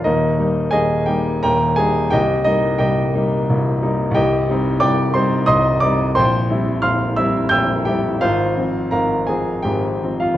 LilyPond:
<<
  \new Staff \with { instrumentName = "Grand piano" } { \time 3/4 \key c \minor \tempo 4 = 88 <ees' bes' ees''>4 <aes' ees'' aes''>8 <g' g''>8 <bes' g'' bes''>8 <aes' aes''>8 | <g' ees'' g''>8 <ees' ees''>8 <g' ees'' g''>4 r4 | <g' ees'' g''>4 <d'' g'' d'''>8 <c'' c'''>8 <ees'' c''' ees'''>8 <d'' d'''>8 | <c'' g'' c'''>4 <f'' c''' f'''>8 <e'' e'''>8 <g'' e''' g'''>8 <g' g''>8 |
<f' c'' f''>4 <bes' f'' bes''>8 <aes' aes''>8 <g' g''>8. <f' f''>16 | }
  \new Staff \with { instrumentName = "Grand piano" } { \clef bass \time 3/4 \key c \minor <ees,, ees,>8 <g bes ees'>8 <ees,, ees,>8 <g bes ees'>8 <ees,, ees,>8 <g bes ees'>8 | <c,, c,>8 <g bes>8 <c,, c,>8 <g bes ees'>8 <c,, c,>8 <g bes ees'>8 | <c,, c,>8 <g c' ees'>8 <c,, c,>8 <g c' ees'>8 <c,, c,>8 <g c' ees'>8 | <bes,,, bes,,>8 <g c' e'>8 <bes,,, bes,,>8 <g c' e'>8 <bes,,, bes,,>8 <g c' e'>8 |
<aes,, aes,>8 <f c'>8 <aes,, aes,>8 <f c'>8 <aes,, aes,>8 <f c'>8 | }
>>